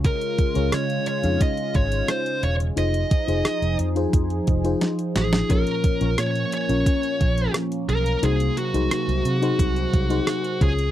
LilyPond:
<<
  \new Staff \with { instrumentName = "Lead electric guitar" } { \time 4/4 \key aes \mixolydian \tempo 4 = 88 bes'4 des''8 des''8 ees''8 des''8 c''8 des''8 | ees''4. r2 aes'8 | bes'4 des''8 des''4. r8 bes'8 | aes'8 ges'2. aes'8 | }
  \new Staff \with { instrumentName = "FM electric piano" } { \time 4/4 \key aes \mixolydian <des' f' aes' des''>8. <des' f' aes' des''>4 <des' ees' f' aes' f''>4.~ <des' ees' f' aes' f''>16 r8 | <ees' f' aes' c''>8. <ees' f' aes' c''>4 <ees' f' aes' c''>4 <ees' f' aes' c''>4~ <ees' f' aes' c''>16 | <des' f' bes' des''>8. <des' f' bes' des''>4 <des' f' bes' des''>4.~ <des' f' bes' des''>16 r8 | <ees' ges' aes' c''>8. <ees' ges' aes' c''>4 <ees' ges' aes' c''>4 <ees' ges' aes' c''>8. <des' f' aes' des''>8 | }
  \new Staff \with { instrumentName = "FM electric piano" } { \clef bass \time 4/4 \key aes \mixolydian des4 r2. | r1 | bes,4. r2 r8 | c4. r2 des8 | }
  \new Staff \with { instrumentName = "Analog synth pad" } { \clef bass \time 4/4 \key aes \mixolydian << { <aes f'>1 | <ees' aes'>1 | <bes des'>1 | ges2.~ ges8 <aes f'>8 | } \\ { des1 | f1~ | f1 | c2.~ c8 des8 | } >> }
  \new Staff \with { instrumentName = "Fingered electric bass" } { \clef bass \time 4/4 \key aes \mixolydian r8. des,16 des8 r16 f,16 r8 aes,,8 r8 e,,8 | f,,8 r16 f,,16 r16 f,,16 f,8 f,8 f,,8 r8 a,,8 | bes,,16 r8 bes,,16 bes,8 r16 bes,,16 r8 bes,,8 r8 ces,8 | c,8 r16 c,16 r16 c,16 c8 c,8 c,8 r8 des,8 | }
  \new DrumStaff \with { instrumentName = "Drums" } \drummode { \time 4/4 <hh bd>16 hh16 <hh bd>16 hh16 <hh ss>16 hh16 hh16 hh16 <hh bd>16 hh16 <hh bd>16 hh16 <hh ss>16 hh16 hh16 hh16 | hh16 hh16 <hh bd>16 hh16 <hh ss>16 hh16 hh16 hh16 <hh bd>16 hh16 <hh bd>16 hh16 <hh sn>16 hh16 <hh sn>16 <hh sn>16 | <hh bd>16 hh16 <hh bd>16 hh16 <hh ss>16 hh16 hh16 hh16 <hh bd>16 hh16 <hh bd>16 hh16 <hh ss>16 hh16 hh16 hh16 | hh16 hh16 hh16 hh16 <hh ss>16 hh16 hh16 hh16 <hh bd>16 hh16 <hh bd>16 hh16 <hh ss>16 hh16 <hh bd>16 hh16 | }
>>